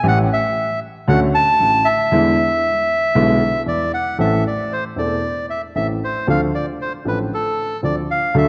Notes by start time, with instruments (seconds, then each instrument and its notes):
0.03 grand piano A1 A2 E3 A3 C#4 G4
0.08 bandoneon F#5
0.33 bandoneon E5
1.08 grand piano D2 D3 A3 C#4 F#4, bandoneon F#5
1.35 bandoneon A5
1.60 grand piano A1 A2
1.85 bandoneon E5
2.12 grand piano E2 D3 E3 G#3 B3 E4
3.15 grand piano B1 B2 D3 G#3 B3 E4
3.66 grand piano E2 E3, bandoneon D5
3.94 bandoneon F#5
4.18 grand piano A1 A2 E3 A3 C4 A4, bandoneon E5
4.47 bandoneon D5
4.73 bandoneon C5
4.96 grand piano E1 E2 E3 A3 C4 A4, bandoneon D5
5.50 bandoneon E5
5.75 grand piano A1 A2 E3 A3 C4 A4, bandoneon E5
6.04 bandoneon C5
6.27 grand piano D2 D3 F3 C4 D4 A4, bandoneon F5
6.55 bandoneon D5
6.82 bandoneon C5
7.05 grand piano A1 A2 F3 C4 D4 A4, bandoneon B4
7.34 bandoneon A4
7.83 grand piano D2 D3 F3 C4 D4 A4, bandoneon D5
8.11 bandoneon F5
8.34 grand piano D2 D3 F#3 A3 D4 A4, bandoneon E5